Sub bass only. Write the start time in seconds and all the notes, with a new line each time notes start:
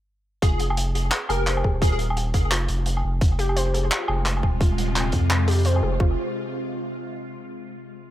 0.42 F1
1.29 F1
1.64 D#1
2.34 F1
2.69 F1
3.04 F1
3.21 F1
4.09 F1
4.43 D#1
5.13 F2
5.83 F1
6.00 F1